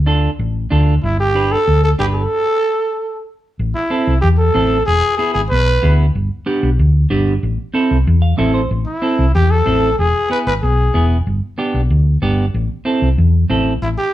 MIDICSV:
0, 0, Header, 1, 4, 480
1, 0, Start_track
1, 0, Key_signature, 0, "minor"
1, 0, Tempo, 319659
1, 1553, Time_signature, 4, 2, 24, 8
1, 21225, End_track
2, 0, Start_track
2, 0, Title_t, "Trumpet"
2, 0, Program_c, 0, 56
2, 1557, Note_on_c, 0, 64, 85
2, 1778, Note_off_c, 0, 64, 0
2, 1802, Note_on_c, 0, 67, 94
2, 2280, Note_on_c, 0, 69, 104
2, 2303, Note_off_c, 0, 67, 0
2, 2749, Note_off_c, 0, 69, 0
2, 2758, Note_on_c, 0, 69, 85
2, 2865, Note_off_c, 0, 69, 0
2, 2988, Note_on_c, 0, 67, 91
2, 3098, Note_off_c, 0, 67, 0
2, 3227, Note_on_c, 0, 69, 96
2, 4850, Note_off_c, 0, 69, 0
2, 5627, Note_on_c, 0, 64, 83
2, 6300, Note_off_c, 0, 64, 0
2, 6325, Note_on_c, 0, 67, 90
2, 6439, Note_off_c, 0, 67, 0
2, 6574, Note_on_c, 0, 69, 89
2, 7253, Note_off_c, 0, 69, 0
2, 7297, Note_on_c, 0, 68, 107
2, 7751, Note_off_c, 0, 68, 0
2, 7764, Note_on_c, 0, 68, 88
2, 8001, Note_off_c, 0, 68, 0
2, 8016, Note_on_c, 0, 68, 94
2, 8128, Note_off_c, 0, 68, 0
2, 8256, Note_on_c, 0, 71, 107
2, 8933, Note_off_c, 0, 71, 0
2, 13304, Note_on_c, 0, 64, 87
2, 13977, Note_off_c, 0, 64, 0
2, 14035, Note_on_c, 0, 67, 93
2, 14276, Note_on_c, 0, 69, 96
2, 14299, Note_off_c, 0, 67, 0
2, 14984, Note_off_c, 0, 69, 0
2, 14993, Note_on_c, 0, 68, 98
2, 15439, Note_off_c, 0, 68, 0
2, 15486, Note_on_c, 0, 71, 94
2, 15591, Note_off_c, 0, 71, 0
2, 15721, Note_on_c, 0, 71, 102
2, 15827, Note_off_c, 0, 71, 0
2, 15959, Note_on_c, 0, 68, 87
2, 16625, Note_off_c, 0, 68, 0
2, 20753, Note_on_c, 0, 64, 79
2, 20861, Note_off_c, 0, 64, 0
2, 20990, Note_on_c, 0, 67, 83
2, 21225, Note_off_c, 0, 67, 0
2, 21225, End_track
3, 0, Start_track
3, 0, Title_t, "Clean electric guitar"
3, 0, Program_c, 1, 27
3, 96, Note_on_c, 1, 62, 77
3, 108, Note_on_c, 1, 65, 59
3, 108, Note_on_c, 1, 69, 87
3, 441, Note_off_c, 1, 62, 0
3, 443, Note_off_c, 1, 65, 0
3, 446, Note_off_c, 1, 69, 0
3, 1059, Note_on_c, 1, 62, 80
3, 1066, Note_on_c, 1, 65, 71
3, 1076, Note_on_c, 1, 69, 80
3, 1402, Note_off_c, 1, 62, 0
3, 1406, Note_off_c, 1, 65, 0
3, 1408, Note_off_c, 1, 69, 0
3, 2024, Note_on_c, 1, 62, 66
3, 2031, Note_on_c, 1, 67, 66
3, 2043, Note_on_c, 1, 71, 67
3, 2365, Note_off_c, 1, 62, 0
3, 2368, Note_off_c, 1, 67, 0
3, 2371, Note_off_c, 1, 71, 0
3, 2982, Note_on_c, 1, 62, 65
3, 2998, Note_on_c, 1, 67, 56
3, 3002, Note_on_c, 1, 71, 78
3, 3326, Note_off_c, 1, 62, 0
3, 3328, Note_off_c, 1, 67, 0
3, 3334, Note_off_c, 1, 71, 0
3, 5860, Note_on_c, 1, 60, 74
3, 5870, Note_on_c, 1, 69, 72
3, 5873, Note_on_c, 1, 64, 58
3, 6204, Note_off_c, 1, 60, 0
3, 6207, Note_off_c, 1, 64, 0
3, 6208, Note_off_c, 1, 69, 0
3, 6823, Note_on_c, 1, 60, 75
3, 6830, Note_on_c, 1, 64, 67
3, 6836, Note_on_c, 1, 69, 72
3, 7164, Note_off_c, 1, 60, 0
3, 7168, Note_off_c, 1, 64, 0
3, 7171, Note_off_c, 1, 69, 0
3, 7782, Note_on_c, 1, 59, 66
3, 7795, Note_on_c, 1, 64, 58
3, 7795, Note_on_c, 1, 68, 79
3, 8125, Note_off_c, 1, 59, 0
3, 8128, Note_off_c, 1, 64, 0
3, 8130, Note_off_c, 1, 68, 0
3, 8741, Note_on_c, 1, 59, 76
3, 8755, Note_on_c, 1, 64, 58
3, 8756, Note_on_c, 1, 68, 77
3, 9085, Note_off_c, 1, 59, 0
3, 9087, Note_off_c, 1, 64, 0
3, 9090, Note_off_c, 1, 68, 0
3, 9703, Note_on_c, 1, 59, 75
3, 9703, Note_on_c, 1, 62, 83
3, 9711, Note_on_c, 1, 67, 101
3, 10042, Note_off_c, 1, 59, 0
3, 10045, Note_off_c, 1, 62, 0
3, 10048, Note_off_c, 1, 67, 0
3, 10665, Note_on_c, 1, 62, 82
3, 10666, Note_on_c, 1, 59, 76
3, 10672, Note_on_c, 1, 67, 94
3, 11003, Note_off_c, 1, 59, 0
3, 11006, Note_off_c, 1, 62, 0
3, 11008, Note_off_c, 1, 67, 0
3, 11616, Note_on_c, 1, 60, 81
3, 11629, Note_on_c, 1, 69, 93
3, 11633, Note_on_c, 1, 64, 68
3, 11961, Note_off_c, 1, 60, 0
3, 11966, Note_off_c, 1, 64, 0
3, 11968, Note_off_c, 1, 69, 0
3, 12342, Note_on_c, 1, 77, 63
3, 12570, Note_off_c, 1, 77, 0
3, 12578, Note_on_c, 1, 60, 83
3, 12590, Note_on_c, 1, 69, 94
3, 12591, Note_on_c, 1, 64, 68
3, 12591, Note_on_c, 1, 76, 62
3, 12813, Note_off_c, 1, 76, 0
3, 12825, Note_on_c, 1, 72, 64
3, 12922, Note_off_c, 1, 60, 0
3, 12925, Note_off_c, 1, 64, 0
3, 12928, Note_off_c, 1, 69, 0
3, 13051, Note_off_c, 1, 72, 0
3, 13542, Note_on_c, 1, 60, 70
3, 13548, Note_on_c, 1, 64, 70
3, 13560, Note_on_c, 1, 69, 65
3, 13883, Note_off_c, 1, 60, 0
3, 13887, Note_off_c, 1, 64, 0
3, 13890, Note_off_c, 1, 69, 0
3, 14500, Note_on_c, 1, 60, 71
3, 14510, Note_on_c, 1, 64, 69
3, 14519, Note_on_c, 1, 69, 66
3, 14842, Note_off_c, 1, 60, 0
3, 14848, Note_off_c, 1, 64, 0
3, 14850, Note_off_c, 1, 69, 0
3, 15462, Note_on_c, 1, 59, 72
3, 15472, Note_on_c, 1, 64, 52
3, 15474, Note_on_c, 1, 68, 81
3, 15803, Note_off_c, 1, 59, 0
3, 15805, Note_off_c, 1, 64, 0
3, 15809, Note_off_c, 1, 68, 0
3, 16427, Note_on_c, 1, 59, 77
3, 16433, Note_on_c, 1, 64, 69
3, 16444, Note_on_c, 1, 68, 66
3, 16765, Note_off_c, 1, 59, 0
3, 16770, Note_off_c, 1, 64, 0
3, 16771, Note_off_c, 1, 68, 0
3, 17385, Note_on_c, 1, 59, 86
3, 17396, Note_on_c, 1, 62, 69
3, 17398, Note_on_c, 1, 67, 95
3, 17725, Note_off_c, 1, 59, 0
3, 17727, Note_off_c, 1, 62, 0
3, 17731, Note_off_c, 1, 67, 0
3, 18349, Note_on_c, 1, 59, 88
3, 18358, Note_on_c, 1, 62, 64
3, 18361, Note_on_c, 1, 67, 95
3, 18687, Note_off_c, 1, 59, 0
3, 18688, Note_off_c, 1, 62, 0
3, 18692, Note_off_c, 1, 67, 0
3, 19297, Note_on_c, 1, 60, 87
3, 19302, Note_on_c, 1, 64, 74
3, 19315, Note_on_c, 1, 69, 78
3, 19640, Note_off_c, 1, 60, 0
3, 19643, Note_off_c, 1, 64, 0
3, 19646, Note_off_c, 1, 69, 0
3, 20266, Note_on_c, 1, 60, 85
3, 20273, Note_on_c, 1, 64, 82
3, 20282, Note_on_c, 1, 69, 78
3, 20605, Note_off_c, 1, 60, 0
3, 20609, Note_off_c, 1, 64, 0
3, 20610, Note_off_c, 1, 69, 0
3, 21225, End_track
4, 0, Start_track
4, 0, Title_t, "Fingered electric bass"
4, 0, Program_c, 2, 33
4, 0, Note_on_c, 2, 38, 96
4, 401, Note_off_c, 2, 38, 0
4, 589, Note_on_c, 2, 33, 89
4, 974, Note_off_c, 2, 33, 0
4, 1076, Note_on_c, 2, 38, 90
4, 1459, Note_off_c, 2, 38, 0
4, 1554, Note_on_c, 2, 31, 94
4, 2321, Note_off_c, 2, 31, 0
4, 2517, Note_on_c, 2, 38, 91
4, 2899, Note_off_c, 2, 38, 0
4, 3001, Note_on_c, 2, 31, 100
4, 3382, Note_off_c, 2, 31, 0
4, 5396, Note_on_c, 2, 33, 93
4, 5587, Note_off_c, 2, 33, 0
4, 6115, Note_on_c, 2, 36, 80
4, 6307, Note_off_c, 2, 36, 0
4, 6356, Note_on_c, 2, 40, 96
4, 6739, Note_off_c, 2, 40, 0
4, 6836, Note_on_c, 2, 33, 99
4, 7219, Note_off_c, 2, 33, 0
4, 7320, Note_on_c, 2, 28, 87
4, 7509, Note_off_c, 2, 28, 0
4, 8035, Note_on_c, 2, 32, 93
4, 8227, Note_off_c, 2, 32, 0
4, 8282, Note_on_c, 2, 35, 99
4, 8662, Note_off_c, 2, 35, 0
4, 8760, Note_on_c, 2, 38, 104
4, 9141, Note_off_c, 2, 38, 0
4, 9238, Note_on_c, 2, 31, 92
4, 9428, Note_off_c, 2, 31, 0
4, 9954, Note_on_c, 2, 35, 91
4, 10145, Note_off_c, 2, 35, 0
4, 10197, Note_on_c, 2, 38, 97
4, 10579, Note_off_c, 2, 38, 0
4, 10680, Note_on_c, 2, 31, 109
4, 11061, Note_off_c, 2, 31, 0
4, 11156, Note_on_c, 2, 33, 88
4, 11347, Note_off_c, 2, 33, 0
4, 11878, Note_on_c, 2, 36, 86
4, 12068, Note_off_c, 2, 36, 0
4, 12120, Note_on_c, 2, 40, 100
4, 12501, Note_off_c, 2, 40, 0
4, 12600, Note_on_c, 2, 33, 107
4, 12981, Note_off_c, 2, 33, 0
4, 13075, Note_on_c, 2, 33, 94
4, 13266, Note_off_c, 2, 33, 0
4, 13796, Note_on_c, 2, 36, 88
4, 13987, Note_off_c, 2, 36, 0
4, 14041, Note_on_c, 2, 40, 92
4, 14421, Note_off_c, 2, 40, 0
4, 14516, Note_on_c, 2, 33, 103
4, 14898, Note_off_c, 2, 33, 0
4, 14996, Note_on_c, 2, 28, 88
4, 15186, Note_off_c, 2, 28, 0
4, 15716, Note_on_c, 2, 32, 91
4, 15906, Note_off_c, 2, 32, 0
4, 15958, Note_on_c, 2, 35, 107
4, 16340, Note_off_c, 2, 35, 0
4, 16438, Note_on_c, 2, 28, 101
4, 16819, Note_off_c, 2, 28, 0
4, 16917, Note_on_c, 2, 31, 93
4, 17107, Note_off_c, 2, 31, 0
4, 17632, Note_on_c, 2, 35, 87
4, 17824, Note_off_c, 2, 35, 0
4, 17875, Note_on_c, 2, 38, 94
4, 18257, Note_off_c, 2, 38, 0
4, 18352, Note_on_c, 2, 31, 101
4, 18736, Note_off_c, 2, 31, 0
4, 18835, Note_on_c, 2, 33, 95
4, 19025, Note_off_c, 2, 33, 0
4, 19549, Note_on_c, 2, 36, 90
4, 19742, Note_off_c, 2, 36, 0
4, 19792, Note_on_c, 2, 40, 96
4, 20176, Note_off_c, 2, 40, 0
4, 20273, Note_on_c, 2, 33, 103
4, 20657, Note_off_c, 2, 33, 0
4, 20754, Note_on_c, 2, 33, 87
4, 20945, Note_off_c, 2, 33, 0
4, 21225, End_track
0, 0, End_of_file